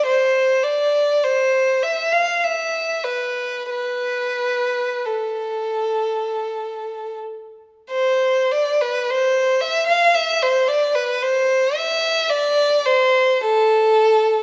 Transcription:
0.06 0.63 C5 medium
0.63 1.23 D5 medium
1.24 1.83 C5 medium
1.83 2.13 E5 medium
2.12 2.42 F5 medium
2.44 3.04 E5 soft
3.04 3.69 B4 soft
3.70 5.03 B4 medium
5.06 7.17 A4 soft
7.91 8.48 C5 medium
8.51 8.81 D5 medium
8.81 9.09 B4 medium
9.10 9.63 C5 medium
9.61 9.88 E5 medium
9.87 10.13 F5 medium
10.15 10.42 E5 medium
10.42 10.69 C5 medium
10.68 10.96 D5 medium
10.95 11.22 B4 medium
11.22 11.76 C5 medium
11.76 12.31 E5 medium
12.30 12.85 D5 medium
12.86 13.42 C5 medium
13.41 14.43 A4 medium

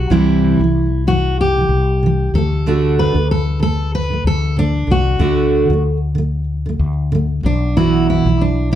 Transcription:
0.00 0.11 F#4 medium
0.10 0.56 C2 medium
0.10 0.60 C3 medium
0.10 0.60 E3 medium
0.10 0.60 G3 medium
0.10 0.60 C4 medium
0.10 1.09 E4 medium
0.10 0.61 E4 medium
0.59 1.66 C2 medium
0.59 0.85 C3 soft
0.64 0.86 E3 soft
1.07 1.33 C3 medium
1.07 1.34 E3 medium
1.07 1.40 F#4 medium
1.41 2.35 G4 medium
1.57 1.81 C3 soft
1.57 1.83 E3 soft
1.69 2.29 C2 medium
2.03 2.28 C3 medium
2.03 2.30 E3 medium
2.34 3.11 D2 medium
2.34 2.60 D3 soft
2.34 2.94 A4 medium
2.38 2.62 A3 medium
2.66 3.13 D3 medium
2.66 3.16 A3 medium
2.66 3.16 D4 medium
2.66 3.16 F#4 medium
2.99 3.31 B4 medium
3.14 4.21 D2 medium
3.14 3.40 D3 soft
3.14 3.41 A3 soft
3.31 3.61 A4 medium
3.60 3.87 D3 medium
3.60 3.88 A3 medium
3.60 3.94 A4 medium
3.95 4.27 B4 medium
4.10 4.35 D3 soft
4.10 4.37 A3 soft
4.24 4.84 D2 medium
4.24 4.56 A4 medium
4.57 4.83 D3 medium
4.57 4.84 A3 medium
4.57 4.91 D4 medium
4.87 5.18 C2 medium
4.87 5.14 D3 soft
4.87 5.16 A3 medium
4.91 5.82 F#4 medium
5.19 5.66 D2 loud
5.19 5.69 D3 medium
5.19 5.70 A3 medium
5.19 5.70 D4 medium
5.19 5.70 F#4 medium
5.69 6.76 D2 medium
5.69 5.95 D3 medium
5.73 5.97 A3 soft
6.15 6.42 D3 medium
6.15 6.44 A3 medium
6.66 6.91 D3 soft
6.66 6.92 A3 medium
6.79 7.40 D2 medium
7.12 7.38 D3 medium
7.12 7.40 A3 medium
7.43 8.22 B1 medium
7.43 7.70 B2 medium
7.43 7.72 E3 medium
7.43 7.75 D4 medium
7.76 8.24 B2 medium
7.76 8.26 E3 medium
7.76 8.26 B3 medium
7.76 8.09 E4 medium
7.76 8.27 E4 medium
7.76 8.27 F#4 medium
8.10 8.42 E4 medium
8.25 8.75 B1 medium
8.25 8.50 B2 soft
8.25 8.52 E3 soft
8.41 8.72 D4 medium
8.72 8.75 B2 medium

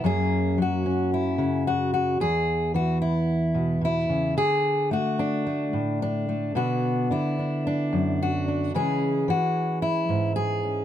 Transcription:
0.04 2.17 F#2 medium
0.04 0.57 F#3 soft
0.04 2.17 A#3 soft
0.04 0.85 C#4 soft
0.04 0.59 G#4 medium
0.58 2.17 F#3 medium
0.62 1.13 F#4 medium
0.86 2.17 C#4 soft
1.14 1.67 E4 medium
1.38 2.17 C#3 medium
1.67 1.92 F#4 medium
1.94 2.21 F#4 medium
2.20 4.37 E2 medium
2.20 2.75 G#4 loud
2.74 4.34 E3 medium
2.74 3.01 F#4 medium
3.02 3.83 E4 medium
3.54 3.80 B2 medium
3.81 4.09 B2 medium
3.81 4.37 E4 medium
4.09 4.37 C#3 medium
4.37 6.55 D3 medium
4.37 4.92 G#4 medium
4.91 5.45 A3 medium
4.91 5.75 F#4 medium
5.19 6.01 D4 medium
5.47 6.28 A3 soft
5.73 6.55 A2 medium
6.02 6.56 D4 medium
6.29 6.53 A3 soft
6.55 7.11 B2 medium
6.55 7.10 D3 soft
6.55 8.71 B3 soft
6.55 7.38 D4 soft
6.55 7.11 F#4 medium
7.11 8.74 D3 medium
7.11 8.21 E4 medium
7.39 7.66 D4 soft
7.67 8.47 D4 medium
7.93 8.71 F#2 medium
8.22 8.75 F#4 medium
8.48 8.72 D4 soft
8.74 9.29 C#3 medium
8.74 9.27 E3 soft
8.74 10.85 G#3 soft
8.74 10.62 C#4 soft
8.74 9.29 G#4 medium
9.28 10.85 E3 medium
9.28 9.82 F#4 medium
9.82 10.35 E4 medium
10.09 10.85 G#2 medium
10.36 10.85 G#4 medium
10.63 10.85 C#4 soft

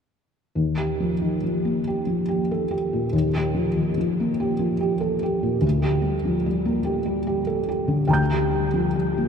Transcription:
0.55 3.09 D#2 soft
0.77 1.12 G4 soft
1.00 1.35 F3 soft
1.21 1.43 D#3 soft
1.44 1.78 F3 soft
1.65 1.99 A#3 soft
1.87 2.21 G4 soft
2.07 2.41 F3 soft
2.28 2.62 G4 soft
2.51 2.72 A4 soft
2.71 3.04 G4 soft
2.93 3.26 A#2 soft
3.13 5.59 D#2 soft
3.34 3.68 G4 soft
3.54 3.88 F3 soft
3.76 3.97 D#3 soft
3.98 4.31 F3 soft
4.20 4.52 A#3 soft
4.40 4.73 G4 soft
4.59 4.93 F3 soft
4.81 5.14 G4 soft
5.01 5.22 A4 soft
5.23 5.56 G4 soft
5.43 5.64 A#2 soft
5.61 8.04 D2 soft
5.82 6.16 G4 soft
6.02 6.36 G3 soft
6.25 6.46 F3 soft
6.46 6.78 G3 soft
6.65 6.98 A#3 soft
6.84 7.18 G4 soft
7.06 7.38 G3 soft
7.27 7.59 G4 soft
7.47 7.67 A4 soft
7.69 8.01 G4 soft
7.88 8.22 D3 soft
8.08 9.28 D2 soft
8.08 9.28 G5 soft
8.08 9.28 A#5 soft
8.13 9.28 G6 soft
8.31 8.65 G4 soft
8.51 8.87 G3 soft
8.74 8.96 F3 soft
8.96 9.28 G3 soft
9.18 9.28 A#3 soft

